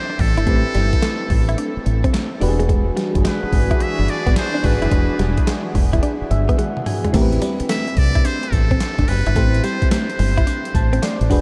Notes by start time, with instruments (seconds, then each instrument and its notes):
Already playing: synth keys C4 E4 G4 B4, muted trumpet C5
0.10 clean electric guitar D4
0.19 fingered electric bass A1, muted trumpet A4, muted clean electric guitar stroke, kick, open hi-hat
0.37 fingered electric bass G1, clean electric guitar E4, closed hi-hat
0.46 fingered electric bass A1, clean electric guitar A3, synth keys C4 E4 G4 B4, kick, closed hi-hat
0.75 fingered electric bass G1, clean electric guitar G3, snare, closed hi-hat
0.93 muted clean electric guitar stroke, kick, closed hi-hat
1.02 clean electric guitar A3, snare, clap, closed hi-hat
1.30 fingered electric bass A1, muted clean electric guitar stroke, kick, open hi-hat
1.49 clean electric guitar E4, closed hi-hat
1.58 clean electric guitar D4, closed hi-hat
1.77 muted fingered electric bass stroke
1.86 fingered electric bass A1, muted clean electric guitar stroke, closed hi-hat
2.04 clean electric guitar C4, kick, closed hi-hat
2.13 clean electric guitar A3, snare, clap, closed hi-hat
2.40 fingered electric bass E1, synth keys D4 F#4 G4 B4, muted clean electric guitar stroke, open hi-hat
2.49 synth keys G#4
2.60 clean electric guitar G#3, closed hi-hat
2.69 analog synth pad E3 D4 F#4 G#4, clean electric guitar G#3, kick, closed hi-hat
2.97 clean electric guitar G3, snare, closed hi-hat
3.15 fingered electric bass G1, muted clean electric guitar stroke, kick, closed hi-hat
3.25 clean electric guitar G#3, muted trumpet B4, snare, clap, closed hi-hat
3.43 muted clean electric guitar stroke, muted fingered electric bass stroke
3.53 fingered electric bass G#1, kick, open hi-hat
3.71 clean electric guitar E4, kick, closed hi-hat
3.80 clean electric guitar D4, muted trumpet E5, closed hi-hat
3.99 fingered electric bass G1, muted clean electric guitar stroke
4.08 muted trumpet D5, closed hi-hat
4.26 fingered electric bass G#1, clean electric guitar B3, kick, closed hi-hat
4.36 muted trumpet C5, snare, clap, closed hi-hat
4.54 clean electric guitar D4
4.63 fingered electric bass G#1, synth keys D4 F#4 G#4 B4, muted trumpet B4, muted clean electric guitar stroke, kick, open hi-hat
4.82 fingered electric bass F#1, clean electric guitar E4, closed hi-hat
4.91 fingered electric bass E1, clean electric guitar G#3, kick, closed hi-hat
5.19 fingered electric bass E1, clean electric guitar G3, snare, closed hi-hat
5.37 muted clean electric guitar stroke, kick, closed hi-hat
5.47 clean electric guitar G#3, snare, clap, closed hi-hat
5.75 fingered electric bass E1, muted clean electric guitar stroke, kick, open hi-hat
5.93 clean electric guitar E4, kick, closed hi-hat
6.03 clean electric guitar D4, closed hi-hat
6.22 muted fingered electric bass stroke
6.31 fingered electric bass G1, synth keys E5, muted clean electric guitar stroke, closed hi-hat
6.49 clean electric guitar B3, kick, closed hi-hat
6.58 clean electric guitar G#3, synth keys F#5, closed hi-hat, high tom
6.77 mid tom
6.86 synth keys G#5, muted clean electric guitar stroke, mid tom, open hi-hat
7.05 clean electric guitar G#3, closed hi-hat, floor tom
7.13 fingered electric bass A1, clean electric guitar A3, synth keys C4 E4 G4 A#4, kick, closed hi-hat, crash, tambourine
7.22 synth keys B4
7.32 closed hi-hat
7.42 clean electric guitar G3, closed hi-hat, tambourine
7.60 muted clean electric guitar stroke, muted fingered electric bass stroke, closed hi-hat
7.69 clean electric guitar A3, muted trumpet E5, snare, clap, closed hi-hat, tambourine
7.87 muted clean electric guitar stroke, closed hi-hat
7.97 fingered electric bass C2, muted trumpet D5, kick, open hi-hat
8.15 clean electric guitar E4, kick, closed hi-hat
8.25 clean electric guitar D4, muted trumpet C5, closed hi-hat, tambourine
8.43 muted clean electric guitar stroke, closed hi-hat
8.52 fingered electric bass A1, muted trumpet A4, kick, closed hi-hat, tambourine
8.71 clean electric guitar C4, kick, closed hi-hat
8.80 snare, clap, closed hi-hat, tambourine
8.98 fingered electric bass G1, clean electric guitar D4, kick, closed hi-hat
9.08 fingered electric bass F#1, muted trumpet B4, muted clean electric guitar stroke, open hi-hat, tambourine
9.26 fingered electric bass G1, clean electric guitar E4, closed hi-hat
9.35 fingered electric bass A1, clean electric guitar A3, synth keys C4 E4 G4 C5, kick, closed hi-hat, tambourine
9.54 closed hi-hat
9.63 clean electric guitar G3, muted trumpet C5, closed hi-hat, tambourine
9.82 muted clean electric guitar stroke, muted fingered electric bass stroke, kick, closed hi-hat
9.91 clean electric guitar A3, muted trumpet C5, snare, clap, closed hi-hat, tambourine
10.10 closed hi-hat
10.19 fingered electric bass G1, muted clean electric guitar stroke, open hi-hat
10.37 clean electric guitar E4, kick, closed hi-hat
10.47 clean electric guitar D4, closed hi-hat, tambourine
10.65 closed hi-hat
10.75 fingered electric bass A1, synth keys A5, muted clean electric guitar stroke, kick, closed hi-hat, tambourine
10.93 clean electric guitar C4, closed hi-hat
11.02 clean electric guitar A3, synth keys D5, snare, clap, closed hi-hat, tambourine
11.21 fingered electric bass A1, closed hi-hat
11.30 fingered electric bass E1, synth keys D4 F#4 G#4 B4, muted clean electric guitar stroke, kick, open hi-hat, tambourine